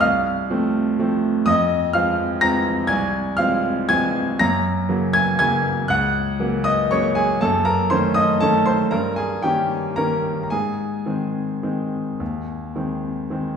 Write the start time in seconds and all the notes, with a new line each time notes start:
0.01 C2 F5 F6
0.50 F3 A3 C4
0.99 F3 A3 C4
1.46 F2 D#5 D#6
1.93 F3 G#3 C4 F5 F6
2.41 F3 G#3 C4 A#5 A#6
2.87 C2 G#5 G#6
3.37 F3 G#3 C4 F5 F6
3.89 F3 G#3 C4 G#5 G#6
4.39 F#2 A#5 A#6
4.89 C#3 F#3 A#3
5.13 G#5 G#6
5.39 C#3 F#3 A#3 G#5 G#6
5.88 C#2 F#5 F#6
6.39 C#3 F#3 A#3
6.64 D#5 D#6
6.91 C#3 F#3 A#3 C#5 C#6
7.15 G#4 G#5
7.41 F#2 A4 A5
7.65 A#4 A#5
7.90 D#3 A3 C#4 C5 C6
8.14 D#5 D#6
8.40 D#3 A3 C#4 A4 A5
8.66 C5 C6
8.91 G2 A#4 A#5
9.16 G#4 G#5
9.42 D#3 A#3 C#4 G4 G5
9.96 D#3 A#3 C#4 A#4 A#5
10.43 A#5
10.50 G#2 G#4 G#5
11.06 D#3 G#3 C4
11.63 D#3 G#3 C4
12.20 D#2
12.76 D#3 G#3 C4
13.30 D#3 G#3 C4